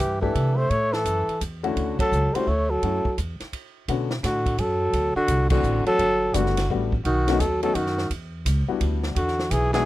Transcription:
Already playing: tenor saxophone E3, trumpet G4
0.00 upright bass G2, kick, hi-hat pedal, ride
0.21 tenor saxophone E3, grand piano A3 D4 E4 G4, trumpet A4, kick
0.35 upright bass C3, kick, ride
0.57 tenor saxophone A3, trumpet C5
0.70 upright bass A2, tenor saxophone A3, trumpet C#5, kick, ride
0.93 tenor saxophone E3, trumpet A4, snare
1.05 upright bass F#2, kick, hi-hat pedal, ride
1.28 muted upright bass stroke, ride
1.41 upright bass E2, kick, hi-hat pedal, ride
1.63 tenor saxophone D3, grand piano A3 C#4 E4 F#4, trumpet F#4, ride
1.76 upright bass D2, kick, ride
1.99 tenor saxophone F#3, trumpet A4, muted upright bass stroke, kick, ride
2.12 upright bass C#2, hi-hat pedal
2.33 tenor saxophone G3, grand piano A3 C#4 E4 F#4, trumpet C5, ride
2.47 upright bass D2, tenor saxophone A3, trumpet C#5, kick
2.70 tenor saxophone F#3, trumpet A4
2.82 upright bass F#2, grand piano A3 C#4 E4 F#4, kick, ride
3.05 muted upright bass stroke, kick
3.18 upright bass E2, kick, hi-hat pedal, ride
3.40 muted upright bass stroke, snare, ride
3.53 kick, ride
3.88 upright bass B2, grand piano D3 A3 B3 C#4 F#4, kick, ride
4.11 snare
4.23 upright bass A2, tenor saxophone D3, trumpet F#4, kick, snare, hi-hat pedal, ride
4.46 kick, ride
4.58 upright bass F#2, tenor saxophone F#3, trumpet A4, kick, ride
4.93 upright bass D2, kick, ride
5.16 tenor saxophone D3, trumpet F#4, muted upright bass stroke
5.28 upright bass C2, kick, hi-hat pedal, ride
5.50 tenor saxophone D3, grand piano E3 A3 C4 D4 F#4, trumpet F#4, kick, crash
5.63 upright bass A1, hi-hat pedal
5.86 tenor saxophone F#3, trumpet A4, muted upright bass stroke, ride
5.99 upright bass G1, kick, ride
6.34 upright bass F#1, tenor saxophone D3, grand piano G3 A3 B3 D4 F#4, trumpet F#4, kick, hi-hat pedal, ride
6.46 snare
6.57 snare, ride
6.70 upright bass A1, grand piano G3 A3 B3 D4 F#4, kick
6.92 kick
7.05 upright bass B1, tenor saxophone D#3, trumpet F#4, kick, ride
7.28 grand piano A3 B3 C#4 D#4 F#4, snare, ride
7.40 upright bass D#2, tenor saxophone F#3, trumpet A4, kick, hi-hat pedal, ride
7.63 tenor saxophone F#3, grand piano A3 B3 C#4 D#4 F#4, trumpet A4, ride
7.75 upright bass F#2, tenor saxophone D#3, trumpet F#4, kick, ride
7.87 snare
7.98 snare
8.10 upright bass E2, kick, ride
8.45 upright bass C#2, kick, hi-hat pedal, ride
8.68 grand piano G3 B3 D4 E4 F#4
8.81 upright bass D2, kick, ride
9.03 snare
9.16 upright bass E2, tenor saxophone D3, trumpet F#4, kick, ride
9.28 snare
9.39 snare
9.51 upright bass B1, tenor saxophone E3, trumpet G#4, kick, hi-hat pedal, ride
9.73 tenor saxophone E3, grand piano G#3 B3 D4 E4 F#4, trumpet G#4, snare, ride

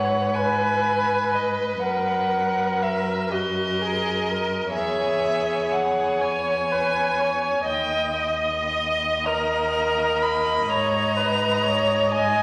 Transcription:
Already playing: cello G#2, violin B4 F#5, viola C#5
0.34 viola B4, violin G#5
1.35 violin D#5
1.84 cello F#2, viola A#4, violin F#5
2.83 violin E5
3.31 viola F#4, violin A#4 D#5
3.81 viola G#4
4.30 viola A#4
4.74 cello E2, viola G#4, violin C#5 E5
5.72 violin F#5
6.21 viola C#5, violin G#5
6.71 viola B4
7.19 viola C#5
7.66 cello D#2, viola D#5, violin D#5 G5
8.19 violin D#5
9.26 viola A#4, violin A#5
10.23 violin B5
10.69 cello G#2, viola C#5, violin A#5
11.17 viola B4
11.63 viola C#5
12.11 viola D#5, violin G#5

